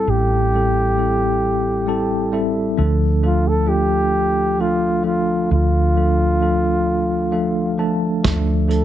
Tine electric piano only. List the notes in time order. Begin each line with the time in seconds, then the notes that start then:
Already playing: G3 C4 E4 A4
0.08 A1 A2
0.54 G3 C4 E4 A4
0.97 G3 C4 E4 A4
1.87 G3 C4 E4 A4 A5
2.32 G3 C4 E4 A4 E5
2.77 D2 D3 F3 A3 D4 A4
3.23 F3 A3 D4 A4
3.66 F3 A3 D4 F4
4.58 F3 A3 D4 A4
5.03 F3 A3 D4 A4
5.51 D2 D3
5.96 F3 A3 D4 A4
6.41 F3 A3 D4 A4
7.32 F3 A3 D4 A4 F5
7.78 F3 A3 D4 A4 A5
8.24 D2 D3 F3 A3 D4 A4
8.68 F3 A3 D4 A4